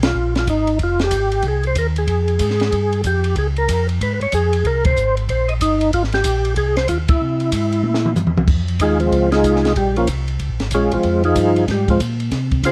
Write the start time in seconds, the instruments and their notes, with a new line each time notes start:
Already playing: tonewheel organ B1
0.03 tonewheel organ F4, snare, ride
0.15 tonewheel organ A#1
0.35 tonewheel organ F4, snare, ride
0.47 tonewheel organ G#1 D#4, kick, hi-hat pedal, ride
0.67 ride
0.79 tonewheel organ F1, kick, ride
0.83 tonewheel organ F4
0.99 snare, ride
1.04 tonewheel organ G4
1.11 tonewheel organ G#1, kick, hi-hat pedal, ride
1.32 ride
1.42 tonewheel organ C2, kick, ride
1.48 tonewheel organ G#4
1.63 tonewheel organ C5, ride
1.75 tonewheel organ D#2 A#4, kick, hi-hat pedal, ride
1.96 tonewheel organ G#4, ride
2.08 tonewheel organ F2, kick, ride
2.28 ride
2.39 tonewheel organ G#2, kick, hi-hat pedal, ride
2.50 snare
2.60 snare, ride
2.72 tonewheel organ G2, kick, ride
2.93 ride
3.04 tonewheel organ F2 G4, kick, hi-hat pedal, ride
3.24 ride
3.36 tonewheel organ C#2 G#4, kick, ride
3.56 tonewheel organ A#4, ride
3.69 tonewheel organ F2, kick, hi-hat pedal, ride
3.89 ride
4.01 tonewheel organ G#2 B4, kick, ride
4.14 tonewheel organ B4
4.21 tonewheel organ G#2 C#5, ride
4.32 tonewheel organ F2 G#4, kick, hi-hat pedal, ride
4.53 ride
4.65 tonewheel organ C2 A#4, kick, ride
4.85 tonewheel organ C5, kick, ride
4.96 tonewheel organ G#1, hi-hat pedal
5.17 ride
5.29 tonewheel organ A#1 C5, kick, ride
5.48 tonewheel organ D#5, ride
5.61 tonewheel organ G1 D#4, kick, hi-hat pedal, ride
5.81 ride
5.93 tonewheel organ G#1 F4, kick, ride
6.04 snare
6.12 tonewheel organ G4, snare, ride
6.24 tonewheel organ A#1, kick, hi-hat pedal, ride
6.45 ride
6.56 tonewheel organ C2 G#4, kick, ride
6.77 tonewheel organ C5, snare, ride
6.88 tonewheel organ D#2 F4, kick, hi-hat pedal, ride
7.08 tonewheel organ D#2 E4, kick, ride
7.21 tonewheel organ C3
7.40 ride
7.52 tonewheel organ G#2, kick, hi-hat pedal, ride
7.72 ride
7.83 tonewheel organ A#2, high tom
7.94 snare
8.06 mid tom
8.16 tonewheel organ G2, hi-hat pedal, mid tom
8.27 tonewheel organ E2, mid tom
8.37 tonewheel organ C2, mid tom
8.48 tonewheel organ F2, kick, crash
8.68 ride
8.80 tonewheel organ D#2 G#3 D#4 F4 G#4, kick, hi-hat pedal, ride
9.00 tonewheel organ F3 G#3 C4 F4, ride
9.12 tonewheel organ C#2, kick, ride
9.32 tonewheel organ G#3 D#4 F4 G#4, snare, ride
9.44 tonewheel organ C2, kick, hi-hat pedal, ride
9.56 snare
9.65 snare, ride
9.76 tonewheel organ A#1 G3 G4, kick, ride
9.96 tonewheel organ F3 A#3 C#4 F4, ride
10.07 tonewheel organ C2, kick, hi-hat pedal, ride
10.28 ride
10.39 tonewheel organ C#2, kick, ride
10.49 tonewheel organ A#1
10.60 tonewheel organ G#1, snare, ride
10.71 tonewheel organ A#1 G#3 C#4 F4 G#4, kick, hi-hat pedal, ride
10.91 tonewheel organ A#1 F3 G#3 C4 F4, ride
11.03 tonewheel organ F2, kick, ride
11.23 tonewheel organ F3 D#4 F4 G#4, ride
11.36 tonewheel organ G2, kick, hi-hat pedal, ride
11.56 ride
11.68 tonewheel organ G#2 G3 G4, kick, snare, ride
11.88 tonewheel organ F3 G#3 C4 F4, kick, ride
12.00 tonewheel organ A#2, kick, hi-hat pedal, ride
12.20 ride
12.31 tonewheel organ C3, kick, snare, ride
12.51 kick, ride
12.63 tonewheel organ C#3 C4 F4 G#4 C5, kick, hi-hat pedal, ride